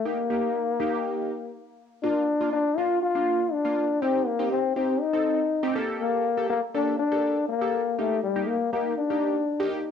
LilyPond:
<<
  \new Staff \with { instrumentName = "Synth keys" } { \time 4/4 \key bes \major \tempo 4 = 121 <bes ees' g'>16 r16 <bes ees' g'>8 r8 <bes ees' g'>4 r4. | <bes d' f'>8 r16 <bes d' f'>8 r16 <bes d' f'>8 r16 <bes d' f'>8 r8 <bes d' f'>8 r16 | <c' ees' g'>8 r16 <c' ees' g'>8 r16 <c' ees' g'>8 r16 <c' ees' a'>8 r8 <c' ees' g'>16 <bes g' a'>8~ | <bes g' a'>8 r16 <bes g' a'>8 r16 <bes g' a'>8 r16 <bes g' a'>8 r8 <bes g' a'>8 r16 |
<bes ees' g'>8 r16 <bes ees' g'>8 r16 <bes ees' g'>8 r16 <bes ees' g'>8 r8 <bes ees' g'>8 r16 | }
  \new Staff \with { instrumentName = "Trombone" } { \time 4/4 \key bes \major bes2. r4 | d'4 d'8 f'8 f'4 d'4 | c'8 bes8 c'8 c'8 ees'4. r8 | bes4 bes8 d'8 d'4 bes4 |
a8 g8 bes8 bes8 d'4. r8 | }
>>